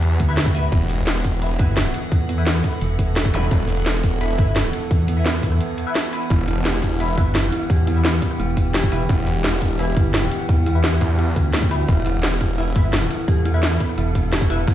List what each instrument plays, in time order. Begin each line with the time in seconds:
Already playing: detuned saw bass E2, synth drone E3 B3 G4 F#5, synth stab E4 B4 E5
0.02 closed hi-hat
0.20 wobble bass D2, kick, closed hi-hat
0.29 synth stab E4 B4 E5
0.37 snare, closed hi-hat
0.46 kick
0.55 synth stab E4 B4 E5, closed hi-hat
0.72 detuned saw bass E1, synth drone A4, kick, closed hi-hat
0.90 closed hi-hat
1.07 snare, closed hi-hat
1.16 cross-stick
1.24 kick, closed hi-hat
1.42 synth stab E4 B4 E5, closed hi-hat
1.59 wobble bass G1, synth stab E4 B4 E5, kick, closed hi-hat
1.77 snare, closed hi-hat
1.86 cross-stick
1.94 closed hi-hat
2.12 wobble bass E2, kick, closed hi-hat
2.29 closed hi-hat
2.38 synth stab E4 B4 E5
2.47 snare, closed hi-hat
2.55 cross-stick
2.64 kick, closed hi-hat
2.73 cross-stick
2.81 wobble bass E1, closed hi-hat
2.99 kick, closed hi-hat
3.16 snare, closed hi-hat
3.25 kick
3.34 wobble bass E1, synth stab E4 B4 E5, closed hi-hat, zap
3.51 detuned saw bass E1, kick, closed hi-hat
3.69 closed hi-hat
3.86 snare, closed hi-hat
3.95 cross-stick
4.04 kick, closed hi-hat
4.21 synth stab E4 B4 E5, closed hi-hat
4.38 wobble bass G1, synth stab E4 B4 E5, kick, closed hi-hat
4.56 snare, closed hi-hat
4.65 cross-stick
4.73 closed hi-hat
4.91 wobble bass E2, kick, closed hi-hat
5.08 closed hi-hat
5.17 synth stab E4 B4 E5
5.26 snare, closed hi-hat
5.34 cross-stick
5.43 wobble bass E2, kick, closed hi-hat
5.52 cross-stick
5.61 closed hi-hat
5.78 closed hi-hat
5.87 synth stab E4 B4 E5
5.95 snare, closed hi-hat
6.13 synth stab E4 B4 E5, closed hi-hat
6.30 detuned saw bass E1, synth bell E4, synth drone G4, kick, closed hi-hat
6.48 synth bell E4, closed hi-hat
6.65 synth bell G4, snare, closed hi-hat
6.74 cross-stick
6.83 synth bell E4, kick, closed hi-hat
7.00 synth bell E4, synth stab E4 B4 E5, closed hi-hat
7.18 wobble bass G1, synth stab E4 B4 E5, kick, closed hi-hat
7.35 synth bell E4, snare, closed hi-hat
7.44 cross-stick
7.52 synth bell E4, closed hi-hat
7.70 wobble bass E2, synth bell G4, kick, closed hi-hat
7.87 synth bell E4, closed hi-hat
7.96 synth stab E4 B4 E5
8.05 synth bell E4, snare, closed hi-hat
8.13 cross-stick
8.22 kick, closed hi-hat
8.31 cross-stick
8.40 wobble bass E1, synth bell E4, closed hi-hat
8.57 synth bell E4, kick, closed hi-hat
8.74 synth bell G4, snare, closed hi-hat
8.83 kick
8.92 wobble bass E1, synth bell E4, synth stab E4 B4 E5, closed hi-hat
9.09 detuned saw bass E1, synth bell E4, kick, closed hi-hat
9.27 closed hi-hat
9.44 synth bell E4, snare, closed hi-hat
9.53 cross-stick
9.62 synth bell E4, kick, closed hi-hat
9.79 synth stab E4 B4 E5, synth bell G4, closed hi-hat
9.97 wobble bass G1, synth bell E4, kick, closed hi-hat
10.14 synth bell E4, snare, closed hi-hat
10.23 cross-stick
10.31 closed hi-hat
10.49 wobble bass E2, synth bell E4, kick, closed hi-hat
10.66 synth bell E4, closed hi-hat
10.75 synth stab E4 B4 E5
10.84 synth bell G4, snare, closed hi-hat
10.93 cross-stick
11.01 detuned saw bass E2, synth bell E4, kick, closed hi-hat
11.10 cross-stick
11.19 synth bell E4, closed hi-hat
11.36 wobble bass D2, kick, closed hi-hat
11.54 synth bell E4, snare, closed hi-hat
11.62 kick
11.71 synth stab E4 B4 E5, synth bell F#4, closed hi-hat
11.88 detuned saw bass E1, synth bell E4, synth drone A4, kick, closed hi-hat
12.06 synth bell E4, closed hi-hat
12.23 synth bell G4, snare, closed hi-hat
12.32 cross-stick
12.41 synth bell E4, kick, closed hi-hat
12.58 synth bell E4, synth stab E4 B4 E5, closed hi-hat
12.76 wobble bass G1, synth stab E4 B4 E5, kick, closed hi-hat
12.93 synth bell E4, snare, closed hi-hat
13.02 cross-stick
13.11 synth bell E4, closed hi-hat
13.28 wobble bass E2, synth bell G4, kick, closed hi-hat
13.45 synth bell E4, closed hi-hat
13.54 synth stab E4 B4 E5
13.63 synth bell E4, snare, closed hi-hat
13.72 cross-stick
13.80 kick, closed hi-hat
13.89 cross-stick
13.98 wobble bass E1, synth bell E4, closed hi-hat
14.15 synth bell E4, kick, closed hi-hat
14.33 synth bell G4, snare, closed hi-hat
14.41 kick
14.50 wobble bass E1, synth stab E4 B4 E5, synth bell E4, closed hi-hat
14.68 detuned saw bass E1, synth bell E4, kick, closed hi-hat